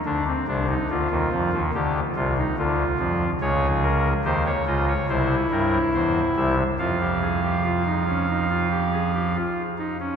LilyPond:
<<
  \new Staff \with { instrumentName = "Pipe organ" } { \time 4/4 \key c \minor \tempo 4 = 71 << { r1 | \key c \phrygian des''8 bes'8 c''16 des''16 ees''16 des''16 c''8 bes'8 c''8 e''8 | f''2.~ f''8 r8 | } \\ { d'16 c'16 d'16 ees'16 f'4 g'8 f'16 ees'16 f'4 | aes'4 g'8 f'8 e'2 | f'16 g'16 aes'16 g'16 f'16 ees'16 des'16 ees'16 f'16 g'16 aes'16 g'16 f'8 ees'16 des'16 | } >> }
  \new Staff \with { instrumentName = "Pipe organ" } { \clef bass \time 4/4 \key c \minor <d, d>8 <c, c>8 <d, d>16 <ees, ees>16 <f, f>16 <ees, ees>16 <d, d>8 <c, c>8 <d, d>8 <f, f>8 | \key c \phrygian <des, des>4 <ees, ees>8 <des, des>8 <c, c>8 <g, g>8 <e, e>8 <c, c>8 | <f, f>2.~ <f, f>8 r8 | }
>>